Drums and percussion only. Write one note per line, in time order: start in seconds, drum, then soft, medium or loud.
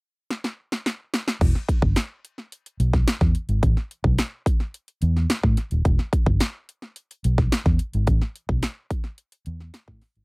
0.31 snare medium
0.44 snare medium
0.72 snare medium
0.86 snare medium
1.14 snare loud
1.28 snare medium
1.41 kick loud
1.41 crash medium
1.55 snare soft
1.69 kick medium
1.69 closed hi-hat medium
1.82 kick loud
1.96 snare loud
1.96 closed hi-hat loud
2.25 closed hi-hat medium
2.38 snare soft
2.52 closed hi-hat medium
2.66 closed hi-hat medium
2.80 closed hi-hat medium
2.93 kick medium
2.93 snare soft
3.08 snare loud
3.08 closed hi-hat medium
3.21 kick medium
3.21 snare soft
3.35 closed hi-hat medium
3.49 closed hi-hat soft
3.63 kick loud
3.63 closed hi-hat medium
3.77 snare soft
3.91 closed hi-hat medium
4.04 kick medium
4.18 snare loud
4.18 closed hi-hat medium
4.46 kick loud
4.46 closed hi-hat medium
4.60 snare soft
4.74 closed hi-hat medium
4.88 closed hi-hat medium
5.02 closed hi-hat medium
5.17 snare soft
5.30 snare loud
5.30 closed hi-hat medium
5.43 kick loud
5.57 snare soft
5.57 closed hi-hat medium
5.71 closed hi-hat soft
5.85 kick loud
5.85 closed hi-hat medium
5.99 snare soft
6.13 kick loud
6.13 closed hi-hat medium
6.26 kick medium
6.40 snare loud
6.40 closed hi-hat medium
6.69 closed hi-hat medium
6.82 snare soft
6.96 closed hi-hat medium
7.11 closed hi-hat medium
7.24 closed hi-hat medium
7.38 kick loud
7.38 snare soft
7.52 snare loud
7.52 closed hi-hat medium
7.66 kick medium
7.66 snare soft
7.79 closed hi-hat medium
7.93 closed hi-hat medium
8.07 kick loud
8.07 closed hi-hat medium
8.22 snare soft
8.36 closed hi-hat medium
8.49 kick medium
8.63 snare loud
8.63 closed hi-hat medium
8.90 kick loud
8.90 closed hi-hat medium
9.04 snare soft
9.18 closed hi-hat medium
9.32 closed hi-hat medium
9.46 closed hi-hat medium
9.60 snare soft
9.74 snare loud
9.74 closed hi-hat loud
9.88 kick loud
10.02 snare soft
10.02 open hi-hat medium
10.16 closed hi-hat soft